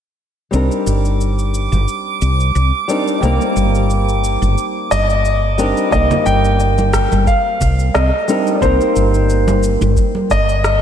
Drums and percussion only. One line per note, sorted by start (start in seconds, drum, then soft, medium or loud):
0.53 shaker soft
0.71 shaker soft
0.87 shaker medium
1.05 shaker soft
1.21 shaker soft
1.39 shaker soft
1.54 shaker medium
1.72 shaker soft
1.88 shaker soft
2.22 shaker medium
2.40 shaker soft
2.55 shaker soft
2.89 shaker medium
3.08 shaker soft
3.23 shaker soft
3.41 shaker soft
3.57 shaker medium
3.75 shaker soft
3.90 shaker soft
4.09 shaker soft
4.24 shaker medium
4.42 shaker soft
4.58 shaker soft
4.92 shaker medium
5.10 shaker soft
5.25 shaker soft
5.59 shaker medium
5.77 shaker soft
5.92 kick loud
5.92 shaker soft
6.11 low conga medium
6.11 shaker soft
6.26 shaker medium
6.45 shaker soft
6.60 shaker soft
6.78 high conga medium
6.78 shaker soft
6.93 kick medium
6.93 cross-stick medium
6.93 shaker medium
7.12 high conga medium
7.12 shaker soft
7.27 kick loud
7.27 shaker soft
7.61 kick loud
7.61 shaker medium
7.79 shaker soft
7.95 cross-stick medium
7.95 shaker soft
8.29 shaker medium
8.47 shaker soft
8.62 kick loud
8.62 shaker soft
8.81 shaker soft
8.96 shaker medium
9.14 shaker soft
9.30 shaker soft
9.48 high conga medium
9.48 shaker soft
9.63 shaker medium
9.81 high conga medium
9.81 shaker soft
9.97 kick loud
9.97 shaker soft
10.15 high conga medium
10.31 kick loud
10.31 shaker medium
10.49 shaker soft
10.64 cross-stick medium
10.64 shaker soft